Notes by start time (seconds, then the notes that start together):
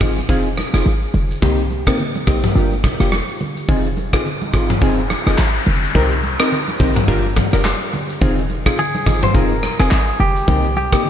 0.01 G#1 C4 D#4 F4 G#4, kick, cross-stick, shaker
0.17 high conga, shaker
0.29 F1 C4 D#4 F4 G#4, kick, shaker
0.46 shaker
0.57 cross-stick, high conga, shaker
0.74 F1 C4 D#4 F4 G#4, cross-stick, shaker
0.86 G#1, high conga, shaker
1.02 shaker
1.14 F1, high conga, low conga, shaker
1.31 shaker
1.42 C2 A#3 C4 D#4 G4, kick, low conga, shaker
1.59 shaker
1.71 high conga, shaker
1.87 A#3 C4 D#4 G4, kick, cross-stick, shaker
1.99 low conga, shaker
2.15 high conga, shaker
2.27 A#1 A#3 C4 D#4 G4, kick, cross-stick, shaker
2.44 mid tom, high conga, shaker
2.55 G1 A#3 D4 F4 G4, shaker
2.72 shaker
2.84 kick, cross-stick, high conga, shaker
3.00 F1 A#3 D4 F4 G4, cross-stick, shaker
3.12 cross-stick, high conga, shaker
3.28 shaker
3.40 high conga, low conga, shaker
3.57 shaker
3.68 F1 C4 D#4 F4 G#4, kick, noise sweep, low conga, shaker
3.85 shaker
3.97 high conga, shaker
4.13 C4 D#4 F4 G#4, kick, cross-stick, shaker
4.25 low conga, shaker
4.42 high conga, shaker
4.53 G#1 C4 D#4 F4 G#4, kick, cross-stick, shaker
4.70 mid tom, high conga, shaker
4.81 F1 C4 D#4 F4 G#4, kick, shaker
4.98 shaker
5.10 cross-stick, high conga, shaker
5.26 F1 C4 D#4 F4 G#4, cross-stick, shaker
5.38 G#1, clap, high conga, shaker
5.55 shaker
5.66 F1, high conga, low conga, shaker
5.83 shaker
5.95 C2 C4 D#4 G4 A#4, kick, low conga, shaker
6.12 shaker
6.23 high conga, shaker
6.39 C4 D#4 G4 A#4, cross-stick, shaker
6.51 low conga, shaker
6.68 high conga, shaker
6.80 A#1 C4 D#4 G4 A#4, kick, low conga, shaker
6.96 mid tom, high conga, shaker
7.08 G1 D4 F4 G4 A#4, kick, shaker
7.25 shaker
7.36 kick, cross-stick, mid tom, high conga, shaker
7.53 F1 D4 F4 G4 A#4, cross-stick, shaker
7.65 cross-stick, clap, high conga, shaker
7.81 shaker
7.93 high conga, low conga, shaker
8.10 shaker
8.21 F1 C4 D#4 F4 G#4, kick, low conga, shaker
8.38 shaker
8.50 high conga, shaker
8.66 C4 D#4 F4 G#4, kick, cross-stick, shaker
8.78 G#4, low conga, shaker
8.95 high conga, shaker
9.06 G#1 C4 D#4 F4 G#4, kick, cross-stick, low conga, shaker
9.23 C5, mid tom, high conga, shaker
9.34 F1 C4 D#4 F4 G#4 A#4, kick, shaker
9.51 shaker
9.63 cross-stick, high conga, shaker
9.79 F1 C4 D#4 F4 G#4, cross-stick, shaker
9.91 G#1, clap, high conga, shaker
10.07 shaker
10.19 F1 G4, high conga, low conga, shaker
10.36 shaker
10.48 C2 A#3 C4 D#4 G4, kick, low conga, shaker
10.64 shaker
10.76 G4, high conga, shaker
10.92 A#3 C4 D#4 G4, kick, cross-stick, shaker
11.04 low conga, shaker